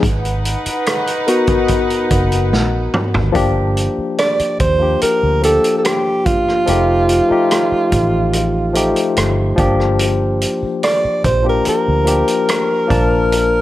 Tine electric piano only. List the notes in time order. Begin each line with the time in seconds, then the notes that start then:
1.27 B3 F#4 A#4
3.32 F3 A#3 D4 G4
4.79 F3 A#3 D4 G4
5.41 F3 A#3 D4 G4
6.66 F3 A3 D#4 G4
7.28 F3 A3 D#4 G4
8.73 F3 A3 D#4 G4
9.56 F3 A#3 D4 G4
11.42 F3 A#3 D4 G4
12.04 F3 A#3 D4 G4
12.87 F3 A#3 D4 A5